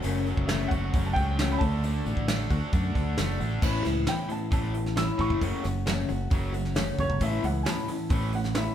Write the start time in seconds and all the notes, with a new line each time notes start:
Already playing: A3
0.02 F#1 F#2 C#3 F#3 A3 C#4 F#4, open hi-hat
0.26 F#3 A3 C#4 F#4, open hi-hat
0.37 F#1, kick
0.47 F#2 C#3 F#3 A3 C#4 F#4 E5, snare, open hi-hat
0.68 F#1 C#4 F#4 F#5, kick, open hi-hat
0.73 F#3 A3
0.93 F#1 F#3 A3 C#4 F#4, kick, open hi-hat
1.07 A5
1.13 C#2 F#3 G5, kick, open hi-hat
1.39 F#2 C#3 F#3 A3 C#4 F#4, snare, open hi-hat
1.52 B5
1.59 D2 D3 D4 F#4 A5, kick, open hi-hat
1.63 A3
1.83 D3 A3 D4 F#4, open hi-hat
2.05 A1 D3 A3 D4 F#4, open hi-hat
2.17 A1, kick
2.28 D3 A3 D4 F#4, snare, open hi-hat
2.50 D2 A3 D4 F#4, kick, open hi-hat
2.72 F#2 D3 A3 D4 F#4, kick, open hi-hat
2.95 D2 D3, kick, open hi-hat
3.18 F#1 D3 A3 D4 F#4, snare, open hi-hat
3.40 A1 A3 D4 F#4, open hi-hat
3.62 A1 A2 E3 A3 B3 C#4 E4, kick, crash
3.84 C#2 A2 E3 B3 C#4 E4, snare, open hi-hat
4.06 A2 E3 B3 C#4 E4 G5, snare, open hi-hat
4.28 A2 E3 B3 C#4 E4 A5, open hi-hat
4.51 A1 A2 E3 A3 B3 C#4 E4 A5, kick, open hi-hat
4.74 A2 E3 B3 C#4 E4, open hi-hat
4.86 snare
4.96 A2 E3 B3 C#4 E4 E6, snare, open hi-hat
5.18 A1 A2 E3 A3 C#6, kick, open hi-hat
5.30 F#1, kick
5.41 F#1 F#2 C#3 F#3 A3 C#4 F#4, kick, open hi-hat
5.63 F#1 F#2 C#3 F#3 A3 C#4 F#4, snare, open hi-hat
5.86 F#2 C#3 F#3 A3 C#4 F#4, snare, open hi-hat
6.08 F#1 F#2 C#3 F#3 A3 C#4 F#4, open hi-hat
6.30 F#1 F#2 C#3 F#3 A3 C#4 F#4, kick, open hi-hat
6.52 F#2 C#3 F#3 A3 C#4 F#4, open hi-hat
6.65 snare
6.74 F#2 C#3 F#3 A3 C#4 F#4, snare, open hi-hat
6.98 F#1 F#2 C#3 C#5, kick, open hi-hat
7.10 G1, kick
7.20 A1 A2 E3 A3 B3 C#4 E4 E5, kick, open hi-hat
7.42 C#2 A2 E3 B3 C#4 E4 F#5, open hi-hat
7.63 A2 E3 B3 C#4 E4 G#5, snare, open hi-hat
7.68 A5
7.88 A2 E3 B3 C#4 E4, open hi-hat
8.09 A1 A2 E3 A3 B3 C#4 E4, kick, open hi-hat
8.32 A2 E3 B3 C#4 E4 F#5, open hi-hat
8.44 snare
8.54 A2 E3 B3 C#4 E4 E5, snare, open hi-hat